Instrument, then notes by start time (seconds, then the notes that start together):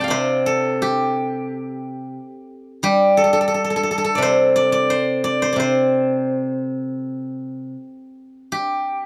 guzheng
Already playing: C5 A5 C6
0.01 F5 G5
0.08 C3 C5 D5
0.46 A4
0.82 G4
2.83 G3 G4
3.17 A4
3.24 A4
3.33 A4
3.41 A4
3.48 A4
3.54 A4
3.64 A4
3.70 A4
3.76 A4
3.83 A4
3.91 A4
3.98 A4
4.04 A4
4.15 C3 D5
4.22 C5
4.56 D5
4.72 D5
4.90 C5
5.24 D5
5.42 C5
5.53 C3 D5
5.60 C5
8.52 G4